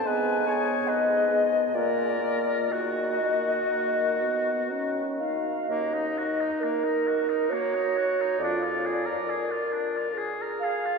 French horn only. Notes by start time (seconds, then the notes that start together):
0.05 B3
0.46 B3
1.30 B3
1.75 A#3
2.21 A#3
2.71 A#3
3.21 A#3
3.72 A#3
4.21 B3
4.71 C#4
5.21 D#4
5.70 D#4
7.51 F#4
8.40 F4
9.25 A#4
10.15 G#4